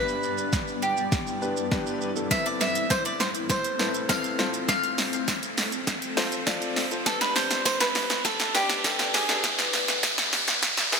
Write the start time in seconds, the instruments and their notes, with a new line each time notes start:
Already playing: ambient pad G2 G3 B3 E4 D5, grand piano B3 D4 G4 B4, mandolin B4, riser
0.08 shaker
0.23 shaker
0.38 shaker
0.53 kick, snare, shaker
0.68 shaker
0.82 mandolin G4, shaker
0.97 shaker
1.12 kick, snare, shaker
1.27 shaker
1.41 grand piano B3 D4 G4 B4, shaker
1.57 shaker
1.71 grand piano B3 D4 G4 B4, kick, snare, shaker
1.86 shaker
2.01 shaker
2.16 grand piano B3 D4 G4 A4, shaker
2.31 ambient pad A2 A3 C4 A4, grand piano C4 E4 A4 B4, mandolin E5, kick, snare, closed hi-hat, tambourine, shaker
2.46 mandolin D5, closed hi-hat, shaker
2.60 mandolin E5, snare, tambourine, shaker
2.75 closed hi-hat, shaker
2.90 mandolin C5, kick, snare, closed hi-hat, tambourine, shaker
3.05 mandolin D5, closed hi-hat, shaker
3.20 mandolin C5, snare, tambourine, shaker
3.35 closed hi-hat, shaker
3.50 mandolin C5, kick, snare, closed hi-hat, tambourine, shaker
3.64 closed hi-hat, shaker
3.79 grand piano C4 E4 A4 B4, snare, tambourine, shaker
3.94 closed hi-hat, shaker
4.09 grand piano C4 E4 A4 B4, mandolin F5, kick, snare, closed hi-hat, tambourine, shaker
4.24 closed hi-hat, shaker
4.38 ambient pad F2 F3 A4 C5, grand piano C4 F4 A4 C5, snare, tambourine, shaker
4.54 closed hi-hat, shaker
4.69 mandolin F5, kick, snare, closed hi-hat, shaker
4.83 closed hi-hat, shaker
4.98 snare, open hi-hat, tambourine, shaker
5.13 closed hi-hat, shaker
5.28 kick, snare, closed hi-hat, tambourine, shaker
5.43 closed hi-hat, shaker
5.58 snare, open hi-hat, tambourine, shaker
5.72 closed hi-hat, shaker
5.87 kick, snare, closed hi-hat, tambourine, shaker
6.02 closed hi-hat, shaker
6.17 grand piano C4 F4 A4 C5, snare, open hi-hat, tambourine, shaker
6.32 closed hi-hat, shaker
6.46 grand piano C4 F4 A4 D5 F5, kick, snare, closed hi-hat, tambourine, shaker
6.61 grand piano A5, closed hi-hat, shaker
6.76 snare, open hi-hat, tambourine, shaker
6.91 grand piano C4 F4 A4 C5, closed hi-hat, shaker
7.06 ambient pad G2 D3 B3 G4 D5, grand piano B3 D4 G4 B4, mandolin A4, kick, snare, closed hi-hat, tambourine, shaker
7.21 mandolin B4, snare, closed hi-hat, shaker
7.36 mandolin C5, snare, open hi-hat, tambourine, shaker
7.51 snare, closed hi-hat, shaker
7.65 mandolin C5, kick, snare, closed hi-hat, tambourine, shaker
7.80 mandolin B4, snare, closed hi-hat, shaker
7.95 snare, open hi-hat, tambourine, shaker
8.10 snare, closed hi-hat, shaker
8.25 mandolin A4, kick, snare, closed hi-hat, tambourine, shaker
8.40 snare, closed hi-hat, shaker
8.55 grand piano B3 D4 G4 B4, mandolin G4, snare, open hi-hat, tambourine, shaker
8.69 snare, closed hi-hat, shaker
8.84 grand piano B3 D4 G4 A4, kick, snare, closed hi-hat, tambourine, shaker
8.99 snare, closed hi-hat, shaker
9.14 mandolin G#4, snare, open hi-hat, tambourine, shaker
9.29 grand piano B3 D4 G4 A4, snare, closed hi-hat, shaker
9.44 ambient pad E2 E3 G#4 B4, grand piano B3 E4 G#4 B4, kick, snare, closed hi-hat, shaker
9.59 snare, closed hi-hat, shaker
9.73 snare, open hi-hat, tambourine, shaker
9.88 snare, closed hi-hat, shaker
10.03 kick, snare, closed hi-hat, tambourine, shaker
10.18 snare, closed hi-hat, shaker
10.33 snare, open hi-hat, tambourine, shaker
10.47 snare, closed hi-hat, shaker
10.62 kick, snare, closed hi-hat, tambourine, shaker
10.77 snare, closed hi-hat, shaker
10.92 grand piano B3 E4 G#4 B4, snare, open hi-hat, tambourine, shaker